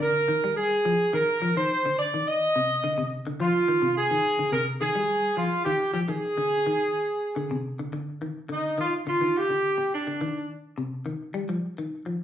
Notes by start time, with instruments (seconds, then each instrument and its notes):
0.00 clean electric guitar D3, horn section A#4
0.28 clean electric guitar D#3
0.44 clean electric guitar G3
0.57 horn section G#4
0.85 clean electric guitar F3
1.13 clean electric guitar D#3, horn section A#4
1.42 clean electric guitar F3
1.57 clean electric guitar D#3, horn section C5
1.86 clean electric guitar D3
1.99 horn section D5
2.14 clean electric guitar D#3
2.27 horn section D#5
2.56 clean electric guitar C3
2.84 clean electric guitar D3
2.98 clean electric guitar C3
3.27 clean electric guitar D3
3.40 clean electric guitar F3, horn section F4
3.68 clean electric guitar D#3
3.82 clean electric guitar C3
3.97 horn section G#4
4.11 clean electric guitar D#3
4.39 clean electric guitar D3
4.52 clean electric guitar C3, horn section A#4
4.81 clean electric guitar D#3, horn section G#4
4.95 clean electric guitar G3
5.37 clean electric guitar F3, horn section F4
5.65 clean electric guitar D#3, horn section G4
5.94 clean electric guitar F3, horn section G4
6.08 clean electric guitar D#3, horn section G#4
6.38 clean electric guitar D3
6.67 clean electric guitar D#3
7.36 clean electric guitar D3
7.51 clean electric guitar C3
7.79 clean electric guitar D3
7.93 clean electric guitar D3
8.22 clean electric guitar D#3
8.49 clean electric guitar D3, horn section D#4
8.78 clean electric guitar D#3, horn section F4
9.07 clean electric guitar D3, horn section F4
9.21 clean electric guitar D#3
9.36 horn section G4
9.50 clean electric guitar D3
9.78 muted clean electric guitar stroke
9.94 horn section D4
10.07 clean electric guitar D3
10.21 clean electric guitar D#3
10.78 clean electric guitar C3
11.06 clean electric guitar D#3
11.34 clean electric guitar G3
11.49 clean electric guitar F3
11.78 clean electric guitar D#3
12.06 clean electric guitar F3